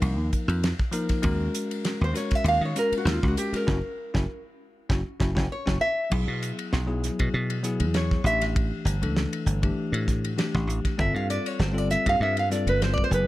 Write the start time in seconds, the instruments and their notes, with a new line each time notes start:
Already playing: tine electric piano F3 A#3 D#4 A#4, nylon-string guitar D#5
0.02 slap bass C2, ride
0.18 slap bass D#2
0.33 kick, hi-hat pedal, ride
0.48 slap bass F2, ride
0.64 snare, ride
0.79 kick, snare
0.92 tine electric piano F3 A#3 D#4 A#4, hi-hat pedal, ride
1.09 muted slap bass stroke, kick, snare, ride
1.22 slap bass D#2, tine electric piano G#3 C#4 F#4 A#4, kick, ride
1.55 hi-hat pedal, ride
1.71 ride
1.85 snare, ride
2.01 slap bass D#2, nylon-string guitar C5
2.13 tine electric piano G#3 C#4 F#4 A#4, nylon-string guitar C#5, snare, hi-hat pedal, ride
2.31 muted slap bass stroke, kick, snare, ride
2.35 nylon-string guitar E5
2.44 slap bass D#2, ride
2.48 nylon-string guitar F5
2.61 slap bass D#3
2.65 nylon-string guitar C#5
2.75 tine electric piano G#3 C#4 F#4 A#4, nylon-string guitar A#4, snare, hi-hat pedal, ride
2.92 muted slap bass stroke, ride
2.97 nylon-string guitar F#4
3.05 slap bass D#2, snare, ride
3.12 nylon-string guitar F4
3.22 slap bass C#2, tine electric piano G#3 C#4 F#4 A#4, kick, snare
3.28 nylon-string guitar F#4
3.37 nylon-string guitar G4, hi-hat pedal, ride
3.53 tine electric piano G#3 C#4 F#4 G#4, nylon-string guitar A#4, muted slap bass stroke, snare, ride
3.67 slap bass F#1, tine electric piano C#4 E4 F#4, kick, snare
4.14 slap bass F#1, tine electric piano C#4 E4 F#4, kick, snare
4.89 slap bass F#1, tine electric piano C#4 E4 F#4, kick, snare
5.20 slap bass F#1, tine electric piano C#4 E4 F#4, kick, snare
5.35 slap bass F#1, tine electric piano C#4 E4 F#4, kick, snare
5.52 nylon-string guitar C#5
5.66 slap bass F#1, tine electric piano C#4 E4 F#4, kick, snare
5.81 nylon-string guitar E5
6.10 slap bass B1, tine electric piano F#3 B3 E4 G#4, kick, crash
6.28 slap bass B2
6.43 hi-hat pedal, ride bell
6.59 ride bell
6.73 slap bass B1, snare
6.87 tine electric piano F#3 B3 E4 G#4
7.04 snare, hi-hat pedal
7.19 slap bass B2, kick, ride bell
7.34 slap bass B2
7.50 ride bell
7.63 tine electric piano F#3 B3 E4 G#4, snare, hi-hat pedal
7.80 slap bass E2, ride bell
7.94 nylon-string guitar C#5, snare, ride bell
8.11 kick, snare
8.24 slap bass A1, tine electric piano E3 A3 D4 G4, nylon-string guitar E5, hi-hat pedal
8.42 snare, ride bell
8.56 kick, ride bell
8.85 slap bass G1, hi-hat pedal, ride bell
9.02 slap bass C#2, tine electric piano E3 A3 D4 A4, ride bell
9.17 snare
9.33 ride bell
9.46 slap bass G1, hi-hat pedal
9.62 tine electric piano E3 A3 D4 G4, kick, ride bell
9.92 slap bass A2, ride bell
10.08 kick, snare, hi-hat pedal
10.25 ride bell
10.37 tine electric piano E3 A3 D4 G4, snare, ride bell
10.55 slap bass A1, kick, snare
10.67 slap bass A1, hi-hat pedal
10.85 muted slap bass stroke, kick, snare, ride bell
10.98 slap bass G1, tine electric piano G3 C4 F4 A4, nylon-string guitar E5, kick
11.14 slap bass G2, nylon-string guitar F5
11.30 nylon-string guitar D5, hi-hat pedal, ride bell
11.46 nylon-string guitar C#5, ride bell
11.59 slap bass G1, nylon-string guitar C5, snare
11.72 tine electric piano G3 C4 F4 A4
11.78 nylon-string guitar D5
11.90 nylon-string guitar E5, snare, hi-hat pedal
12.06 slap bass G2, nylon-string guitar F5, kick, ride bell
12.20 slap bass G2, nylon-string guitar E5
12.37 nylon-string guitar F5, ride bell
12.50 tine electric piano G3 C4 F4 A4, nylon-string guitar D5, snare, hi-hat pedal
12.67 slap bass G1, nylon-string guitar B4, ride bell
12.82 nylon-string guitar C5, snare, ride bell
12.94 nylon-string guitar D5
12.98 kick
13.04 nylon-string guitar C5
13.10 slap bass F#1, tine electric piano F#3 B3 E4 G#4, nylon-string guitar B4, hi-hat pedal